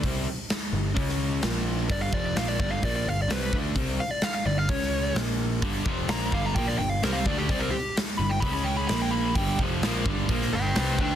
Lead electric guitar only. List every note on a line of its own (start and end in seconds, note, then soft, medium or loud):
1.91 2.02 D5 medium
2.02 2.14 F5 loud
2.14 2.25 D5 medium
2.26 2.37 D5 medium
2.38 2.48 F5 medium
2.48 2.59 D5 medium
2.60 2.71 D5 medium
2.72 2.83 F5 medium
2.85 2.95 D5 loud
2.96 3.08 D5 medium
3.08 3.19 F5 loud
3.22 3.32 D5 loud
3.32 3.54 B4 loud
4.00 4.11 F5 loud
4.11 4.23 D5 medium
4.23 4.33 F5 medium
4.35 4.46 F5 medium
4.47 4.58 D5 medium
4.58 4.69 F5 medium
4.69 5.15 C#5 loud
6.10 6.33 A#5 loud
6.34 6.45 F5 medium
6.46 6.55 A#5 medium
6.56 6.67 G5 medium
6.67 6.78 D5 medium
6.79 6.89 G5 medium
6.89 7.02 F5 medium
7.03 7.14 A#4 medium
7.13 7.25 F5 medium
7.26 7.37 D5 medium
7.38 7.49 G4 medium
7.49 7.61 D5 loud
7.60 7.71 A#4 loud
7.71 7.94 G4 loud
8.18 8.30 B5 medium
8.29 8.41 G5 medium
8.40 8.52 B5 loud
8.53 8.65 B5 medium
8.64 8.76 G5 medium
8.77 8.87 B5 loud
8.88 9.00 B5 loud
9.02 9.13 G5 loud
9.11 9.34 B5 loud
9.35 9.58 G5 loud
10.53 10.76 B4 loud
10.53 10.76 G5 loud
10.77 10.98 B4 medium
10.77 10.99 G5 medium
11.01 11.15 B4 medium
11.01 11.15 G5 medium